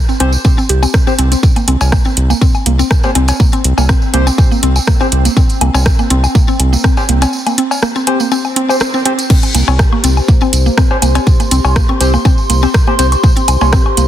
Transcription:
0.09 C4, tambourine
0.20 C2 C4 G4 C5, closed hi-hat, low woodblock
0.33 tambourine
0.44 C4, kick, tambourine, high woodblock
0.58 C4, tambourine, low woodblock
0.69 C2 G4, closed hi-hat
0.83 C4, tambourine, low woodblock
0.94 C4, kick, cross-stick, tambourine
1.07 C4 G4 C5, tambourine
1.19 C2 C4, closed hi-hat, low woodblock
1.32 C4, closed hi-hat, tambourine
1.43 C4, kick, tambourine
1.56 A#3, closed hi-hat, tambourine, high woodblock
1.68 C2 C4, closed hi-hat, low woodblock
1.81 C2, tambourine, cowbell
1.92 A#3, kick, cross-stick, tambourine, low woodblock
2.05 C4, tambourine
2.17 C2, closed hi-hat
2.30 A#3, tambourine, low woodblock
2.41 C4, kick, tambourine
2.55 tambourine, low woodblock
2.66 C2 A#3, closed hi-hat
2.79 C4, tambourine
2.91 kick, cross-stick, tambourine, high woodblock, low woodblock
3.03 A#3 C4 G4 C5, tambourine, cowbell
3.15 C2 C4, closed hi-hat, low woodblock
3.28 closed hi-hat, tambourine, cowbell
3.40 A#3, kick, tambourine
3.52 C4, closed hi-hat, tambourine, low woodblock
3.64 C2, closed hi-hat
3.78 C2 A#3, tambourine, cowbell, low woodblock
3.89 C4, kick, cross-stick, tambourine
4.02 tambourine
4.13 C2 A#3 C4 G4 C5, closed hi-hat, low woodblock
4.27 C4, tambourine, high woodblock
4.38 kick, tambourine, low woodblock
4.51 A#3, tambourine
4.63 C2 C4, closed hi-hat
4.76 tambourine, low woodblock
4.87 A#3, kick, cross-stick
5.00 C4 G4 C5, tambourine, low woodblock
5.12 C2, closed hi-hat
5.25 A#3, closed hi-hat, tambourine
5.37 C4, kick, tambourine, low woodblock
5.49 closed hi-hat, tambourine
5.61 C2 A#3, closed hi-hat, high woodblock, low woodblock
5.74 C2 C4, tambourine, cowbell
5.86 kick, cross-stick, tambourine
5.99 A#3, tambourine, low woodblock
6.10 C2 C4, closed hi-hat
6.24 tambourine, low woodblock
6.35 A#3, kick, tambourine
6.48 C4, tambourine
6.60 C2, closed hi-hat, low woodblock
6.73 A#3, tambourine
6.84 C4, kick, cross-stick, low woodblock
6.97 C4 G4 C5, tambourine, cowbell, high woodblock
7.09 C2 A#3, closed hi-hat
7.22 C4, closed hi-hat, tambourine, cowbell, low woodblock
7.33 tambourine
7.47 A#3, closed hi-hat, tambourine, low woodblock
7.58 C4, closed hi-hat
7.71 tambourine, cowbell
7.82 A#3, cross-stick, tambourine, low woodblock
7.96 C4, tambourine
8.07 C4 G4 C5, closed hi-hat, low woodblock
8.20 A#3, tambourine
8.31 C4, tambourine, swell, high woodblock
8.45 tambourine, low woodblock
8.56 C4, closed hi-hat
8.69 C4 G4 C5, tambourine, low woodblock
8.80 C4, cross-stick, tambourine
8.94 C4, tambourine
9.05 C4 G4 C5, closed hi-hat, low woodblock
9.19 closed hi-hat, tambourine
9.30 C4 G4, kick, crash, tambourine
9.43 closed hi-hat, tambourine, high woodblock
9.55 C2 A#3, closed hi-hat, tambourine, low woodblock
9.68 C2 C4, tambourine, cowbell, high woodblock
9.79 kick, cross-stick, tambourine, low woodblock
9.87 C5
9.92 A#3, high woodblock
10.04 C2 C4, closed hi-hat, tambourine
10.17 tambourine, low woodblock
10.28 A#3, kick, tambourine
10.41 C4, tambourine, low woodblock
10.53 C2, closed hi-hat, tambourine
10.57 C6
10.66 A#3, tambourine
10.77 C4, kick, cross-stick, tambourine, high woodblock, low woodblock
10.91 C4 G4 C5, cowbell
11.02 C2 A#3, closed hi-hat, tambourine, low woodblock
11.15 C4, closed hi-hat, tambourine, cowbell
11.27 kick, tambourine
11.40 A#3, closed hi-hat, tambourine, low woodblock
11.51 C2 C4, closed hi-hat, tambourine
11.64 C2, tambourine, cowbell, high woodblock, low woodblock
11.76 A#3, kick, cross-stick, tambourine
11.89 C4, high woodblock
12.00 C2 C4 G4 C5, closed hi-hat, tambourine, low woodblock
12.14 A#3, tambourine, high woodblock
12.25 C4, kick, tambourine, low woodblock
12.38 tambourine
12.50 C2 A#3, closed hi-hat, tambourine
12.63 C4 G4 C5, tambourine, low woodblock
12.74 kick, cross-stick, tambourine
12.87 A#3 C4 G4 C5, low woodblock
12.99 C2 C4 G4 C5, closed hi-hat, tambourine
13.12 closed hi-hat, tambourine, high woodblock
13.23 A#3, kick, tambourine, low woodblock
13.36 C4, closed hi-hat, tambourine
13.48 C2, closed hi-hat, tambourine, high woodblock, low woodblock
13.61 C2 A#3, tambourine, cowbell, high woodblock
13.73 C4, kick, cross-stick, tambourine
13.86 high woodblock, low woodblock
13.97 C2 A#3, closed hi-hat, tambourine

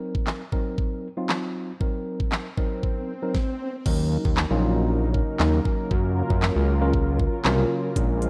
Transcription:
Already playing: F#3 C4 D#4 A#4
0.15 kick
0.27 snare, clap
0.52 F#3 C4 D#4 A#4, kick
0.78 kick
1.17 F#3 C4 D#4 F4
1.29 snare, clap
1.80 F#3 C4 D#4 A#4, kick, swell
2.20 kick
2.32 snare, clap
2.57 F#3 C4 D#4 A#4, kick
2.83 kick
3.22 F#3 C4 D#4 A#4
3.35 kick, snare
3.86 D#2 C#3 F#3 A#3 C#4 D#4 A#4, kick, crash
4.25 D#2, kick
4.37 snare, clap
4.51 A#1 F#3 C#4 D#4 F4
5.14 F#3 C#4 D#4 A#4, kick
5.40 D#2, snare, clap
5.65 F#3 C#4 D#4 A#4, kick
5.91 F#2 F#3 F4, kick
6.30 F#2 F#3 C#4 F4 A#4, kick
6.42 snare, clap
6.56 C#2
6.81 F#3 C#4 F4 A#4
6.94 kick
7.20 kick
7.45 C2 F#3 C#4 F4 A#4, snare, clap
7.96 A#1 F3 G#3 A#3 C#4 F4 A#4, kick, closed hi-hat, noise sweep
8.22 closed hi-hat

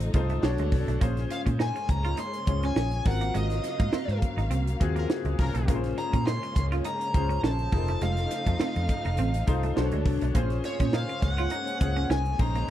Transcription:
Already playing: C#3 F3 A3 D#4 F4 A4 C5
0.00 closed hi-hat
0.14 C2 D#4 F4 A4 C5, muted clean electric guitar stroke, kick, closed hi-hat
0.29 A3, closed hi-hat
0.42 B1 D3 B3 D4 F#4 A4 C#5, snare
0.58 D2 G#3, closed hi-hat
0.72 C2, muted clean electric guitar stroke, kick, open hi-hat
0.88 B1 A3, snare, closed hi-hat
1.00 A#1 C#3 G#3 A#3 C#4 F4 G#4 C5, kick, closed hi-hat
1.17 snare, closed hi-hat
1.31 F5, muted clean electric guitar stroke, snare, closed hi-hat
1.46 A#2 C#4, kick, closed hi-hat
1.59 D#4 G#5, snare
1.76 muted clean electric guitar stroke, closed hi-hat
1.89 C#2 A#5, kick, closed hi-hat
2.05 F4, snare, closed hi-hat
2.17 D#4 C6, closed hi-hat
2.33 closed hi-hat
2.46 C#2 C#4 F4 G#4 C#5, muted clean electric guitar stroke, kick, closed hi-hat
2.63 C#4 G#5, closed hi-hat
2.76 A#1 C#4, snare
2.91 closed hi-hat
3.05 G#1 F#3 A#3 C4 F4 F#4 A#4 F5 F#5, muted clean electric guitar stroke, kick, open hi-hat
3.21 A#3, snare, closed hi-hat
3.34 G#1 G#3 D#5, closed hi-hat
3.50 snare, closed hi-hat
3.64 muted clean electric guitar stroke, snare, closed hi-hat
3.80 G#2 A#3, kick, closed hi-hat
3.93 C4, muted fingered electric bass stroke, snare
4.08 G#2, muted clean electric guitar stroke, closed hi-hat
4.22 kick, closed hi-hat
4.37 G#1 D#4, snare, closed hi-hat
4.50 C2 C4, closed hi-hat
4.67 closed hi-hat
4.80 D#2 C4 F4 F#4 G#4, muted clean electric guitar stroke, kick, closed hi-hat
4.96 F#3 A#3 F4 A#4, closed hi-hat
5.10 snare
5.25 C#2 G#3, closed hi-hat
5.39 C2 F3 C#4 A#4, muted clean electric guitar stroke, kick, open hi-hat
5.54 B1 A#3, snare, closed hi-hat
5.67 A#1 G#3 A#3 C#4 F4 G#4 A#4, kick, closed hi-hat
5.75 C5
5.84 snare, closed hi-hat
5.98 A#5, muted clean electric guitar stroke, snare, closed hi-hat
6.13 A#2 C#4, kick, closed hi-hat
6.26 D#4 C6, snare
6.43 muted clean electric guitar stroke, closed hi-hat
6.56 C#2 C6, kick, closed hi-hat
6.72 F4, snare, closed hi-hat
6.84 D#4 A#5, closed hi-hat
7.01 closed hi-hat
7.14 C#2 C#4 F4 G#4 C5, muted clean electric guitar stroke, kick, closed hi-hat
7.29 C#4, closed hi-hat
7.43 A#1 C#4 A5, snare
7.59 closed hi-hat
7.72 F1 F3 A3 D#4 F4 A4 A#4, muted clean electric guitar stroke, kick, open hi-hat
7.80 C5
7.88 A3, snare, closed hi-hat
8.01 F1 G#3 F5, closed hi-hat
8.17 snare, closed hi-hat
8.31 muted clean electric guitar stroke, snare, closed hi-hat
8.46 F2 A3, kick, closed hi-hat
8.60 C4, muted fingered electric bass stroke, snare
8.76 F2, muted clean electric guitar stroke, closed hi-hat
8.89 kick, closed hi-hat
9.05 F1 D#4, snare, closed hi-hat
9.17 A1 C4, closed hi-hat
9.34 closed hi-hat
9.47 C2 D#4 F4 A4 C5, muted clean electric guitar stroke, kick, closed hi-hat
9.63 A3, closed hi-hat
9.76 B1 D3 B3 D4 F#4 A4 C5, snare
9.84 C#5
9.92 D2 G#3, closed hi-hat
10.05 C2, muted clean electric guitar stroke, kick, open hi-hat
10.21 B1 A3, snare, closed hi-hat
10.34 A#1 C#3 G#3 A#3 C4 C#4 F4 G#4 C5, kick, closed hi-hat
10.41 C#4
10.50 snare, closed hi-hat
10.64 C#5, muted clean electric guitar stroke, snare, closed hi-hat
10.80 A#2 C#4, kick, closed hi-hat
10.93 D#4 F5, snare
11.09 muted clean electric guitar stroke, closed hi-hat
11.22 C#2 F#5, kick, closed hi-hat
11.38 F4, snare, closed hi-hat
11.50 D#4, closed hi-hat
11.67 closed hi-hat
11.80 C#2 C#4 F4 G#4 C#5, muted clean electric guitar stroke, kick, closed hi-hat
11.97 C#4, closed hi-hat
12.10 C2 C#4 G#5, snare
12.26 closed hi-hat
12.38 A#1 C#3 C#4 D#4 G#4 C5 A#5, muted clean electric guitar stroke, kick, crash
12.55 A#3, snare, closed hi-hat

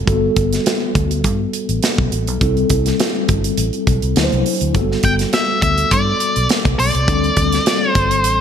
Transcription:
0.06 G1 G3 A3 F#4 A4, kick, closed hi-hat
0.13 B3
0.36 G1, kick, closed hi-hat
0.53 snare, closed hi-hat
0.66 snare, closed hi-hat
0.95 D2, kick, closed hi-hat
1.11 closed hi-hat
1.24 G2, kick, closed hi-hat
1.53 closed hi-hat
1.69 A1, closed hi-hat
1.83 snare, closed hi-hat
1.98 B1, kick
2.12 A1, closed hi-hat
2.27 B1, closed hi-hat
2.40 C2 G3 C4 E4 A4, kick, closed hi-hat
2.57 closed hi-hat
2.70 C2, kick, closed hi-hat
2.86 snare, closed hi-hat
3.00 snare, closed hi-hat
3.29 G1, kick, closed hi-hat
3.44 closed hi-hat
3.57 A1, closed hi-hat
3.73 closed hi-hat
3.87 B1, kick, closed hi-hat
4.02 C2, closed hi-hat
4.16 D2 F#3 D4 E4 B4, snare, closed hi-hat
4.23 C5
4.32 C2, closed hi-hat
4.46 open hi-hat
4.61 D2, closed hi-hat
4.73 G1 G3 A3 F#4 A4, kick, closed hi-hat
4.81 B3
4.92 snare
5.03 G1 G5, kick, closed hi-hat
5.19 snare, closed hi-hat
5.33 E5, snare, closed hi-hat
5.62 D2 E5, kick, closed hi-hat
5.78 closed hi-hat
5.91 G2 D5, kick, closed hi-hat
6.20 closed hi-hat
6.36 B1, closed hi-hat
6.49 snare, closed hi-hat
6.65 C2, kick, closed hi-hat
6.79 B1 D5, open hi-hat
6.95 C2, closed hi-hat
7.06 D2 G3 C4 D4 A4, kick, closed hi-hat
7.24 closed hi-hat
7.37 D2, kick, closed hi-hat
7.53 snare, closed hi-hat
7.66 snare, closed hi-hat
7.92 G1 C5, kick, closed hi-hat
8.11 closed hi-hat
8.24 A1, closed hi-hat

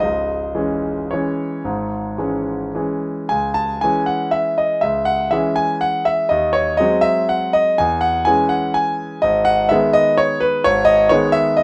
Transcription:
0.00 C#1 C#2 D#5
0.55 E3 G#3 C#4
1.11 E3 G#3 C#4 C#5
1.64 G#1 G#2
2.18 E3 G#3 C#4
2.75 E3 G#3 C#4
3.29 C#2 G#5
3.54 A5
3.81 E3 G#3 C#4 G#5
4.06 F#5
4.31 E5
4.58 D#5
4.81 C#2 E5
5.05 F#5
5.31 E3 G#3 C#4 E5
5.56 G#5
5.81 F#5
6.05 E5
6.29 D#2 D#5
6.53 C#5
6.77 F#3 G#3 C4 D#5
7.01 E5
7.29 F#5
7.53 D#5
7.78 E2 G#5
8.01 F#5
8.25 E3 G#3 C#4 G#5
8.49 F#5
8.74 G#5
9.22 G#1 D#5
9.45 F#5
9.69 D#3 G#3 B3 E5
9.93 D#5
10.18 C#5
10.40 B4
10.64 G#1 C#5
10.85 D#5
11.09 D#3 G#3 B3 C#5
11.32 E5
11.57 D#5

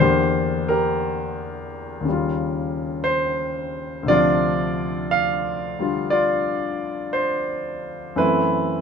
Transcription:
0.00 E2 D3 A#3 G4 C5
0.69 G4 A#4
2.01 D#2
2.05 C#3 G3
2.12 F4
3.04 C5
4.03 D2 C3
4.08 F3 F4 D5
4.14 D4
5.11 F5
5.79 D3 G3 F4
6.10 F4 D5
7.13 C5
8.16 F#2 E3 A3 C4 E4 B4

